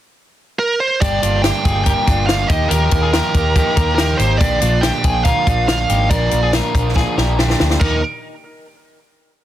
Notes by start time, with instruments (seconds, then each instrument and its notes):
0.59 lead electric guitar A#4
0.80 lead electric guitar C5
1.01 fingered electric bass G1, overdriven electric guitar G2 D3 G3 A#3 D4 G4, clean electric guitar D4 G4, lead electric guitar D5, kick, closed hi-hat
1.23 fingered electric bass G1, overdriven electric guitar G3 A#3 D4 G4, clean electric guitar D4 F4, closed hi-hat
1.42 overdriven electric guitar G2 D3 G3 A#3 D4 G4, clean electric guitar D4 G4, lead electric guitar G5, snare, closed hi-hat
1.65 fingered electric bass G1, overdriven electric guitar G3 A#3 D4 G4, clean electric guitar F4 G#4, kick, closed hi-hat
1.84 overdriven electric guitar G3 A#3, clean electric guitar G4 A#4, lead electric guitar G5, kick, closed hi-hat
1.89 overdriven electric guitar D4 G4
2.07 fingered electric bass G1, overdriven electric guitar G3 A#3 D4 G4, clean electric guitar D4 F4, kick, closed hi-hat
2.27 overdriven electric guitar G2 D3 G3 A#3, lead electric guitar F5, snare, closed hi-hat
2.31 overdriven electric guitar D4 G4
2.48 fingered electric bass D#2, clean electric guitar D#4 G4, overdriven electric guitar G4, lead electric guitar D#5, kick, closed hi-hat
2.52 overdriven electric guitar A#3 D#4
2.68 fingered electric bass D#2, overdriven electric guitar D#3, clean electric guitar G4 A#4, lead electric guitar A#4, closed hi-hat
2.73 overdriven electric guitar F3 A#3 D#4 G4
2.91 fingered electric bass D#2, overdriven electric guitar D#4 G4, kick, closed hi-hat
2.95 overdriven electric guitar A#3
3.02 clean electric guitar F4 G#4
3.13 overdriven electric guitar D#3 F3 A#3 D#4 G4, clean electric guitar G4 A#4, snare, closed hi-hat
3.34 fingered electric bass D#2, overdriven electric guitar A#3 D#4 G4, kick, closed hi-hat
3.56 overdriven electric guitar F3 A#3 D#4 G4, clean electric guitar D#4 G4, kick, closed hi-hat
3.76 fingered electric bass D#2, overdriven electric guitar D#4 G4, clean electric guitar G4 A#4, kick, closed hi-hat
3.81 overdriven electric guitar A#3
3.95 clean electric guitar D#4 G4, lead electric guitar A#4, snare, closed hi-hat
4.00 overdriven electric guitar D#3 F3 A#3 D#4 G4
4.17 fingered electric bass G#1, overdriven electric guitar G4, lead electric guitar C5, closed hi-hat
4.22 overdriven electric guitar A#3 D#4
4.38 fingered electric bass A#1, overdriven electric guitar A#2 D3, clean electric guitar D4 G4, lead electric guitar D5, kick, closed hi-hat
4.43 overdriven electric guitar F3 A#3 D4
4.61 fingered electric bass A#1, overdriven electric guitar F3 A#3 D4, clean electric guitar D4 F4, closed hi-hat
4.81 overdriven electric guitar A#2 D3 F3 A#3, clean electric guitar D4 G4, lead electric guitar G5, snare, closed hi-hat
4.85 overdriven electric guitar D4
5.04 fingered electric bass A#1, overdriven electric guitar F3 A#3 D4, clean electric guitar F4 G#4, kick, closed hi-hat
5.24 overdriven electric guitar D3 F3 A#3 D4, clean electric guitar F4 A#4, lead electric guitar F5, kick, closed hi-hat
5.47 fingered electric bass A#1, overdriven electric guitar F3 A#3 D4, clean electric guitar D4 F4, kick, closed hi-hat
5.68 overdriven electric guitar A#2 D3 F3 A#3 D4, lead electric guitar F5, snare, closed hi-hat
5.89 fingered electric bass G#1, overdriven electric guitar F3 A#3 D4, clean electric guitar D#4 G4, closed hi-hat
6.10 fingered electric bass A#1, overdriven electric guitar A#2 D3 F3 A#3 D4, clean electric guitar F4 A#4, lead electric guitar D5, kick, closed hi-hat
6.31 fingered electric bass A#1, overdriven electric guitar F3 A#3 D4, closed hi-hat
6.43 clean electric guitar F4 G#4
6.53 overdriven electric guitar A#2 D3 F3 A#3 D4, clean electric guitar F4 A#4, snare, closed hi-hat
6.75 fingered electric bass A#1, overdriven electric guitar F3 A#3 D4, kick, closed hi-hat
6.96 overdriven electric guitar D3 F3 A#3 D4, clean electric guitar F4 G#4, kick, snare
7.17 fingered electric bass A#1, overdriven electric guitar F3 A#3 D4, clean electric guitar G4 A#4, snare
7.39 overdriven electric guitar A#2 D3 F3 A#3 D4, clean electric guitar D4 G4, snare
7.50 snare
7.60 fingered electric bass D2, overdriven electric guitar F3 A#3 D4, snare
7.70 snare
7.80 fingered electric bass D#2, overdriven electric guitar D#3 F3 A#3 D#4 G4, clean electric guitar D#4, lead electric guitar A#4, kick, crash